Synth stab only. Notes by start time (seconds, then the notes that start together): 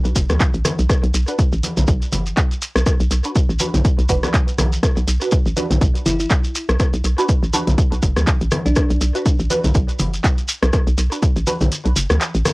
1.28 D4 F#4 B4
3.25 D4 F#4 B4
3.60 D4 F#4 B4
4.09 D4 F#4 B4
4.23 D4 F#4 B4
5.22 D4 F#4 B4
5.57 D4 F#4 B4
7.18 D4 F#4 B4
7.54 D4 F#4 B4
9.15 D4 F#4 B4
9.50 D4 F#4 B4
11.12 D4 F#4 B4
11.47 D4 F#4 B4